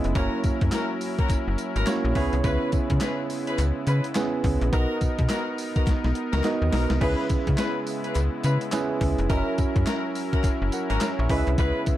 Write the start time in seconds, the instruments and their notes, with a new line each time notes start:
Already playing: pipe organ C#3 G#3 B3 E4, tine electric piano B3 C#4 E4 G#4 D#5
0.04 fm bass F1, closed hi-hat
0.15 fm bass F#1, pipe organ F#3 C#4 A#4, tine electric piano A#3 C#4 E4 F#4 C#5, horn section C#4 E4 F#4 A#4, kick, closed hi-hat, tambourine
0.44 fm bass F#2, kick, closed hi-hat, tambourine
0.61 fm bass F#2, kick, closed hi-hat
0.72 horn section C#4 E4 F#4 A#4, snare, clap, closed hi-hat, tambourine
1.01 open hi-hat, tambourine
1.18 horn section C#4 E4 F#4 A#4, kick, closed hi-hat
1.29 fm bass F#1, kick, clap, closed hi-hat, tambourine
1.48 fm bass F#1
1.58 closed hi-hat, tambourine
1.75 fm bass G#1, horn section C#4 E4 F#4 A#4, closed hi-hat
1.87 tine electric piano A#3 C#4 E4 F#4 C#5, snare, clap, closed hi-hat, tambourine
2.05 fm bass A#1
2.15 fm bass C#2, pipe organ C#3 G#3 B3, tine electric piano B3 C#4 E4 G#4 C#5, horn section C#4 E4 G#4 B4, kick, open hi-hat
2.33 fm bass C2, closed hi-hat
2.44 fm bass C#2, horn section C#4 E4 G#4 B4, kick, closed hi-hat, tambourine
2.72 fm bass C#3, kick, closed hi-hat, tambourine
2.90 fm bass C#3, kick, closed hi-hat
3.01 horn section C#4 E4 G#4 B4, snare, clap, closed hi-hat, tambourine
3.30 open hi-hat, tambourine
3.47 horn section C#4 E4 G#4 B4, closed hi-hat
3.58 fm bass C#2, clap, closed hi-hat, tambourine
3.87 fm bass C#3, horn section C#4 E4 G#4 B4, closed hi-hat, tambourine
4.04 closed hi-hat
4.15 tine electric piano B3 C#4 E4 G#4 B4, snare, clap, closed hi-hat, tambourine
4.44 fm bass C#2, kick, open hi-hat
4.61 fm bass A#1, closed hi-hat
4.72 fm bass B1, horn section B3 D#4 F#4 A#4, pipe organ B3 D#4 A#4, tine electric piano B3 D#4 F#4 A#4 D#5, kick, closed hi-hat, tambourine
5.01 fm bass B2, kick, closed hi-hat, tambourine
5.19 fm bass B2, kick, closed hi-hat
5.29 horn section B3 D#4 F#4 A#4, snare, clap, closed hi-hat, tambourine
5.58 open hi-hat, tambourine
5.75 horn section B3 D#4 F#4 A#4, kick, closed hi-hat
5.87 fm bass B1, kick, snare, clap, closed hi-hat
6.04 fm bass B1, snare
6.15 closed hi-hat
6.32 fm bass C#2, horn section B3 D#4 F#4 A#4, snare, closed hi-hat
6.44 tine electric piano B3 D#4 F#4 A#4 D#5, snare, clap, closed hi-hat
6.62 fm bass D#2
6.72 fm bass B1, horn section B3 D#4 F#4 A#4, snare, open hi-hat
6.90 fm bass C2, snare, closed hi-hat
7.01 fm bass C#2, pipe organ C#3 G#3 E4, horn section C#4 E4 G#4 B4, tine electric piano C#4 E4 G#4 B4 E5, kick, crash, tambourine
7.30 fm bass C#3, kick, closed hi-hat, tambourine
7.47 fm bass C#3, kick, closed hi-hat
7.58 horn section C#4 E4 G#4 B4, snare, clap, closed hi-hat, tambourine
7.87 open hi-hat, tambourine
8.04 horn section C#4 E4 G#4 B4, closed hi-hat
8.15 fm bass C#2, clap, closed hi-hat, tambourine
8.44 fm bass C#3, horn section C#4 E4 G#4 B4, closed hi-hat, tambourine
8.61 closed hi-hat
8.72 tine electric piano C#4 E4 G#4 B4 E5, snare, clap, closed hi-hat, tambourine
9.01 fm bass C#2, kick, open hi-hat
9.18 fm bass F1, closed hi-hat
9.29 fm bass F#1, pipe organ F#3 C#4 A#4, horn section C#4 E4 F#4 A#4, tine electric piano C#4 E4 F#4 A#4 D#5, kick, closed hi-hat, tambourine
9.37 tine electric piano E5
9.58 fm bass F#2, kick, closed hi-hat, tambourine
9.76 fm bass F#2, kick, closed hi-hat
9.86 horn section C#4 E4 F#4 A#4, snare, clap, closed hi-hat, tambourine
10.15 open hi-hat, tambourine
10.32 horn section C#4 E4 F#4 A#4, kick, closed hi-hat
10.44 fm bass F#1, kick, clap, closed hi-hat, tambourine
10.62 fm bass F#1
10.72 tine electric piano A#4 F#5, closed hi-hat, tambourine
10.90 fm bass G#1, horn section C#4 E4 F#4 A#4, tine electric piano G#5, closed hi-hat
11.01 tine electric piano C#5 A#5, snare, clap, closed hi-hat, tambourine
11.19 fm bass A#1, tine electric piano E5 C#6
11.29 fm bass C#2, pipe organ C#3 G#3 B3, horn section C#4 E4 G#4 B4, tine electric piano C#4 E4 G#4 B4 D#5, kick, open hi-hat
11.38 tine electric piano E5
11.47 fm bass C2, closed hi-hat
11.58 fm bass C#2, horn section C#4 E4 G#4 B4, kick, closed hi-hat, tambourine
11.86 fm bass C#3, kick, closed hi-hat, tambourine